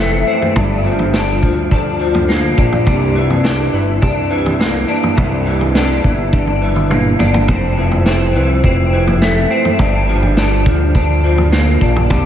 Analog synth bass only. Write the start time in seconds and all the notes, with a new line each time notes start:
Already playing: F1
0.56 G1
1.43 D2
2.58 A#1
2.87 C2
3.73 G1
4.03 C2
5.18 C2
6.04 G1
7.20 G1
7.48 F1
8.35 C2
8.64 F1
9.79 G1
10.66 D2
11.81 A#1
12.10 C2